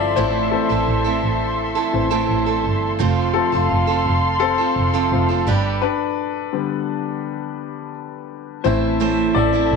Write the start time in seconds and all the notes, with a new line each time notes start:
Already playing: G1 E3 F3 A3 C4 E4 A4 D5 E5 C6
0.16 A1 A2 E3 A3 C4 E4 A4 C5
0.51 E3 A3 C4 A4
0.69 A1 A3 C4 E4 A4
0.88 A1
1.04 A3 C4 E4 A4
1.23 A1
1.75 A3 C4 E4 A4
1.93 A1 E3 A3 C4
2.11 A2 E3 A3 C4 E4 A4
2.29 A1
2.46 A3 C4 E4 A4
2.64 G1
2.99 F1 F3 A3 C4 F4 A4 F5 C6
3.34 F3 A3 C4 A4
3.52 F1 C4 F4 A4
3.70 F1
3.87 C4 F4 A4
4.05 F1
4.40 C4 A4
4.58 C4 F4 A4
4.76 F1
4.94 F3 A3 C4 F4 A4
5.11 F1 F3 A3 C4
5.29 C4 F4 A4
5.47 G1 G3 D4 G4 B4 D5 B5
5.82 D4 B4
6.53 D3 G3 B3
8.64 A1 E3 A3 C4 E4 A4 C5 E5 A5
9.00 A2 E3 A3 C4 E4 C5
9.35 A1 A4 D5
9.53 A3 C4 E4 C5
9.71 A1